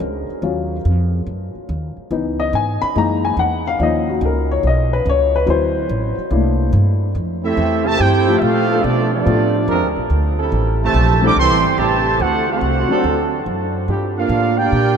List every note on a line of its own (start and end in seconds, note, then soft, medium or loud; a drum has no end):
0.00 0.27 C#2 loud
0.00 0.26 G#3 soft
0.00 0.26 D4 soft
0.00 0.26 F#4 medium
0.00 0.82 A#4 medium
0.29 muted upright bass stroke soft
0.42 0.83 D#2 medium
0.42 0.75 F#3 medium
0.42 0.75 C#4 medium
0.42 0.75 F4 medium
0.85 1.26 F2 loud
1.27 1.53 F#2 medium
1.55 muted upright bass stroke soft
1.69 1.95 D#2 loud
1.97 muted upright bass stroke soft
2.11 2.52 C#2 medium
2.11 2.78 E3 medium
2.11 2.78 B3 medium
2.11 2.79 D#4 medium
2.40 2.53 D#5 medium
2.53 2.80 G#2 loud
2.53 2.82 G#5 medium
2.82 2.95 B5 loud
2.82 muted upright bass stroke soft
2.96 3.36 F#2 medium
2.96 3.62 E3 medium
2.96 3.62 G#3 medium
2.96 3.62 A#3 soft
2.96 3.63 D#4 medium
2.96 3.24 A#5 medium
3.25 3.38 G#5 medium
3.37 3.78 E2 medium
3.37 3.66 F#5 medium
3.67 3.80 F5 medium
3.79 4.20 D#2 medium
3.79 5.44 F3 medium
3.79 5.44 A#3 medium
3.79 5.44 C#4 medium
3.79 5.45 D#4 medium
3.79 3.81 D5 medium
3.83 4.09 D#5 medium
4.09 4.22 F#4 medium
4.21 4.62 C#2 loud
4.26 4.51 A#4 medium
4.51 4.64 C#5 medium
4.63 5.04 B1 medium
4.63 4.93 D#5 medium
4.93 5.06 B4 medium
5.06 5.46 C#2 loud
5.06 5.35 C#5 loud
5.36 5.46 B4 medium
5.46 5.88 D2 medium
5.46 6.14 F#3 medium
5.46 6.14 C4 medium
5.46 6.14 E4 medium
5.46 6.14 B4 medium
5.46 6.71 C5 medium
5.89 6.16 A1 loud
6.18 muted upright bass stroke soft
6.31 6.72 C2 loud
6.31 7.11 A3 medium
6.31 7.11 A#3 medium
6.31 7.12 D4 medium
6.31 7.12 E4 medium
6.73 7.14 G2 loud
7.15 7.56 F2 medium
7.43 7.83 A3 medium
7.43 7.83 C4 medium
7.43 7.84 C4 medium
7.43 7.83 E4 medium
7.43 7.84 G4 medium
7.43 7.84 A4 medium
7.43 7.84 E5 loud
7.57 7.98 E2 loud
7.85 8.00 C3 medium
7.85 8.00 E3 medium
7.85 7.99 A3 medium
7.85 8.00 G4 loud
7.85 8.00 C5 medium
7.85 8.00 E5 medium
7.85 8.00 A5 loud
7.98 8.41 G2 medium
7.98 8.36 C4 medium
7.98 8.36 E4 medium
7.98 8.37 G4 medium
7.98 8.38 A4 medium
7.98 8.38 G5 loud
8.02 8.38 E4 medium
8.02 8.38 C5 medium
8.27 8.81 F3 medium
8.27 8.81 A3 medium
8.27 8.81 C4 medium
8.27 8.81 F4 medium
8.27 8.81 G4 medium
8.38 8.83 A#2 loud
8.38 8.82 A3 medium
8.38 8.84 C4 medium
8.38 8.84 F4 medium
8.38 8.84 A4 medium
8.38 8.42 E5 medium
8.38 8.84 F5 loud
8.42 8.84 C4 medium
8.42 8.84 G4 medium
8.70 9.23 F3 medium
8.70 9.23 B3 medium
8.70 9.23 D4 medium
8.70 9.23 A4 medium
8.83 9.25 B2 medium
8.83 9.12 F3 medium
8.83 9.12 A3 medium
8.83 9.11 B3 medium
8.83 9.11 D4 medium
8.83 9.12 F4 medium
8.83 9.12 A4 medium
8.83 9.12 D5 medium
9.12 9.93 F3 medium
9.12 9.64 A3 medium
9.12 9.64 B3 medium
9.12 9.92 D4 medium
9.12 9.93 F4 medium
9.12 9.65 A4 medium
9.12 9.93 D5 medium
9.24 9.67 A2 loud
9.24 9.51 F3 medium
9.24 9.51 A3 medium
9.24 9.51 B3 medium
9.24 9.51 D4 medium
9.24 9.52 A4 medium
9.68 9.83 F2 loud
9.68 9.88 G#3 loud
9.68 9.88 C4 medium
9.68 9.87 D4 loud
9.68 9.87 A#4 loud
9.83 9.96 D2 medium
9.96 10.09 A#1 medium
10.10 10.51 D2 loud
10.38 10.92 G3 loud
10.38 10.91 C4 medium
10.38 10.91 E4 medium
10.38 10.91 A4 loud
10.52 10.93 A1 loud
10.84 11.21 C3 loud
10.84 11.22 E3 medium
10.84 11.21 A3 medium
10.84 11.22 G4 medium
10.84 11.22 C5 medium
10.84 11.22 E5 medium
10.84 11.22 A5 loud
10.94 11.35 A#1 loud
11.21 11.34 G3 medium
11.21 11.32 G3 loud
11.21 11.34 A3 medium
11.21 11.34 C4 medium
11.21 11.32 C4 medium
11.21 11.31 E4 medium
11.21 11.35 E4 medium
11.21 11.35 A4 medium
11.21 11.32 A4 loud
11.25 11.38 D4 medium
11.25 11.38 A#4 loud
11.25 11.38 E5 loud
11.25 11.38 G5 loud
11.25 11.38 D6 loud
11.36 11.50 C2 medium
11.36 11.77 E3 loud
11.36 11.77 G3 medium
11.36 11.76 C4 medium
11.36 11.77 A4 medium
11.36 11.77 E5 loud
11.36 11.77 G5 medium
11.36 11.77 C6 loud
11.50 11.63 A1 medium
11.63 11.77 G1 medium
11.76 12.19 A1 medium
11.76 12.21 C3 medium
11.76 11.96 G3 medium
11.76 11.96 C4 medium
11.76 11.97 E4 medium
11.76 11.96 G4 loud
11.76 12.21 G4 medium
11.76 12.20 C5 medium
11.76 12.21 E5 medium
11.76 12.21 A5 loud
11.80 12.21 E3 medium
11.80 12.21 A3 medium
12.20 12.61 D2 medium
12.20 12.48 A3 medium
12.20 12.48 C4 medium
12.20 12.49 D4 medium
12.20 12.48 F#4 medium
12.20 12.49 A4 medium
12.20 12.49 C5 medium
12.20 12.49 F#5 loud
12.49 13.29 A3 medium
12.49 13.29 C4 medium
12.49 13.31 D4 medium
12.49 13.29 F#4 medium
12.49 13.30 A4 medium
12.49 13.30 C5 medium
12.49 13.30 F#5 medium
12.61 12.88 C2 loud
12.88 13.02 F#3 medium
12.88 13.43 F#3 loud
12.88 13.02 A3 medium
12.88 13.02 C4 medium
12.88 13.43 C4 loud
12.88 13.43 D4 loud
12.88 13.03 D4 medium
12.88 13.43 A4 loud
12.88 13.03 A4 medium
12.88 muted upright bass stroke soft
13.04 13.45 D2 medium
13.46 13.87 F#2 medium
13.87 14.29 G2 medium
13.87 14.97 G3 medium
13.87 14.97 D4 medium
13.87 14.97 F4 medium
13.87 14.97 G4 loud
14.17 14.56 A#3 medium
14.17 14.56 D4 medium
14.17 14.57 D4 medium
14.17 14.56 F4 medium
14.17 14.56 A4 medium
14.17 14.56 A#4 medium
14.17 14.57 F5 medium
14.29 14.71 A2 loud
14.57 14.97 A#3 medium
14.57 14.97 D4 medium
14.57 14.97 F4 medium
14.57 14.97 G4 medium
14.57 14.97 A#4 loud
14.57 14.97 D5 medium
14.57 14.97 G5 loud
14.72 14.97 A#2 medium